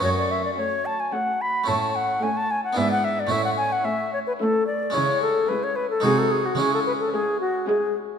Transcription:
<<
  \new Staff \with { instrumentName = "Flute" } { \time 3/4 \key fis \minor \tempo 4 = 110 cis''16 d''16 e''16 d''16 cis''8 a''16 gis''16 fis''8 b''8 | a''8 fis''8 gis''16 a''16 gis''16 fis''16 e''16 fis''16 e''16 d''16 | e''16 fis''16 gis''16 fis''16 e''8 cis''16 b'16 a'8 d''8 | cis''8 a'8 b'16 cis''16 b'16 a'16 gis'16 a'16 gis'16 fis'16 |
gis'16 a'16 b'16 a'16 gis'8 fis'8 gis'8 r8 | }
  \new Staff \with { instrumentName = "Violin section" } { \time 3/4 \key fis \minor r4 fis'4 fis'4 | r4 e'4 e'4 | r4 e'4 e'4 | r4 e'4 fis'4 |
r4 e'4 e'4 | }
  \new Staff \with { instrumentName = "Violin section" } { \time 3/4 \key fis \minor r4 cis'4 cis'4 | r4 cis'4 d'4 | r4 cis'4 cis'4 | r4 cis'4 dis'4 |
r4 cis'4 cis'4 | }
  \new Staff \with { instrumentName = "Harpsichord" } { \time 3/4 \key fis \minor <a cis' fis'>2. | <a cis' e'>2 <b d' e'>4 | <a cis' e'>2. | <gis cis' e'>2 <gis dis' fis'>4 |
<gis cis' e'>2. | }
  \new Staff \with { instrumentName = "Harpsichord" } { \clef bass \time 3/4 \key fis \minor fis,4 r2 | a,4 r4 gis,4 | a,4 r2 | cis4 r4 bis,4 |
cis4 r2 | }
  \new Staff \with { instrumentName = "Viola section" } { \time 3/4 \key fis \minor r4 a4 a4 | r4 a4 b4 | r4 a4 a4 | r4 gis4 gis4 |
r4 gis4 gis4 | }
  \new Staff \with { instrumentName = "Cello section" } { \clef bass \time 3/4 \key fis \minor fis,4 r2 | a,4 r4 gis,4 | a,4 r2 | cis4 r4 bis,4 |
cis4 r2 | }
>>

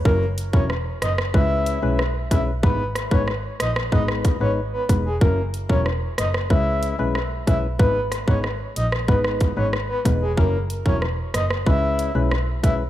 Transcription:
<<
  \new Staff \with { instrumentName = "Soft synth lead" } { \time 4/4 \key gis \minor \tempo 4 = 93 ais'8 r16 cis''16 r8 dis''16 r16 e''8. r8. e''16 r16 | b'8 r16 cis''16 r8 dis''16 r16 dis''16 r8 cis''16 r16 b'16 r16 gis'16 | ais'8 r16 cis''16 r8 dis''16 r16 e''8. r8. e''16 r16 | b'8 r16 cis''16 r8 dis''16 r16 b'16 r8 cis''16 r16 b'16 r16 gis'16 |
ais'8 r16 cis''16 r8 dis''16 r16 e''8. r8. e''16 r16 | }
  \new Staff \with { instrumentName = "Synth stab" } { \time 4/4 \key gis \minor <fis cis' e' ais'>16 r8 <fis cis' e' ais'>16 r4 <gis cis' e' b'>8. <gis cis' e' b'>16 r8 <gis cis' e' b'>16 r16 | <gis b dis' b'>16 r8 <gis b dis' b'>16 r4 <gis b dis' b'>8. <gis b dis' b'>16 r8 <gis b dis' b'>16 r16 | <fis cis' e' ais'>16 r8 <fis cis' e' ais'>16 r4 <gis cis' e' b'>8. <gis cis' e' b'>16 r8 <gis cis' e' b'>16 r16 | <gis b dis' b'>16 r8 <gis b dis' b'>16 r4 <gis b dis' b'>8. <gis b dis' b'>16 r8 <gis b dis' b'>16 r16 |
<fis cis' e' ais'>16 r8 <fis cis' e' ais'>16 r4 <gis cis' e' b'>8. <gis cis' e' b'>16 r8 <gis cis' e' b'>16 r16 | }
  \new Staff \with { instrumentName = "Double bass" } { \clef bass \time 4/4 \key gis \minor fis,,8. e,,8 r16 fis,,16 r16 cis,8. b,,8. b,,8 | gis,,8. gis,,8 r16 ais,,16 r16 gis,,8. gis,,16 r8 e,,8 | fis,,8. e,,8 r16 fis,,16 r16 cis,8. b,,8. b,,8 | gis,,8. gis,,8 r16 ais,,16 r16 gis,,8. gis,,16 r8 e,,8 |
fis,,8. e,,8 r16 fis,,16 r16 cis,8. b,,8. b,,8 | }
  \new DrumStaff \with { instrumentName = "Drums" } \drummode { \time 4/4 bd8 hh16 bd16 ss8 <hh ss>16 ss16 bd8 hh8 ss8 <hh bd>8 | bd8 <hh ss>16 bd16 ss8 <hh ss>16 ss16 bd16 ss16 <hh bd>8 r8 <hh bd>8 | bd8 hh16 bd16 ss8 <hh ss>16 ss16 bd8 hh8 ss8 <hh bd>8 | bd8 <hh ss>16 bd16 ss8 hh16 ss16 bd16 ss16 <hh bd>8 ss8 <hh bd>8 |
bd8 hh16 bd16 ss8 <hh ss>16 ss16 bd8 hh8 ss8 <hh bd>8 | }
>>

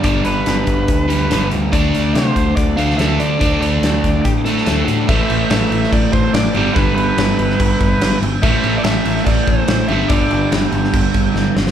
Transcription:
<<
  \new Staff \with { instrumentName = "Lead electric guitar" } { \time 4/4 \key g \mixolydian \tempo 4 = 143 d''8 b'2. r8 | d''4 c''4 d''8 f''8 e''8 d''8~ | d''8 d''4. g'8 a'4 r8 | e''4 e''4 d''8 c''8 d''4 |
b'8 b'2. r8 | \tuplet 3/2 { e''4~ e''16 d''16 } e''4 d''8 c''4 e''8 | d''4 r2. | }
  \new Staff \with { instrumentName = "Overdriven electric guitar" } { \clef bass \time 4/4 \key g \mixolydian <g, d g>2~ <g, d g>8 <g, d g>8 <g, d g>4 | <d a d'>2~ <d a d'>8 <d a d'>8 <d a d'>4 | <d a d'>2~ <d a d'>8 <d a d'>8 <d a d'>4 | <a, e a>2.~ <a, e a>8 <g, d g>8~ |
<g, d g>2.~ <g, d g>8 r8 | <a, e a>2.~ <a, e a>8 <g, d g>8~ | <g, d g>2.~ <g, d g>8 r8 | }
  \new Staff \with { instrumentName = "Fingered electric bass" } { \clef bass \time 4/4 \key g \mixolydian g,,8 g,,8 g,,8 g,,8 d,4 g,,8 d,8 | d,8 d,8 c8 d,8 d,8 d,8 d,8 d8 | d,8 d,8 d,8 d,8 a,4 d,8 a,8 | a,,8 a,,8 a,,8 a,,8 a,,8 a,,8 a,,8 g,,8 |
g,,8 g,,8 g,,8 g,,8 g,,8 g,,8 g,,8 g,,8 | a,,8 a,,8 a,,8 a,,8 a,,8 a,,8 a,,8 g,,8 | g,,8 g,,8 g,,8 g,,8 g,,8 g,,8 g,,8 g,,8 | }
  \new DrumStaff \with { instrumentName = "Drums" } \drummode { \time 4/4 <hh bd>8 hh8 <hh sn>8 <hh bd>8 <hh bd>8 hh8 <hh sn>8 hh8 | <hh bd>8 hh8 <hh sn>8 <hh bd>8 <hh bd>8 hh16 sn16 <hh sn>8 hh8 | <hh bd>8 hh8 <hh sn>8 <hh bd sn>8 <hh bd>8 hh16 sn16 <hh sn>8 hh8 | <cymc bd>8 cymc8 <cymc sn>8 cymc16 sn16 <cymc bd>8 <cymc bd>8 <cymc sn>8 cymc8 |
<cymc bd>8 cymc8 <cymc sn>8 cymc16 sn16 <cymc bd>8 <cymc bd>8 <cymc sn>8 cymc8 | <cymc bd>8 cymc8 <cymc sn>8 cymc16 sn16 <cymc bd>8 <cymc bd>8 <cymc sn>8 cymc8 | <cymc bd>8 cymc8 <cymc sn>8 cymc16 sn16 <cymc bd>8 <cymc bd>8 sn8 sn16 sn16 | }
>>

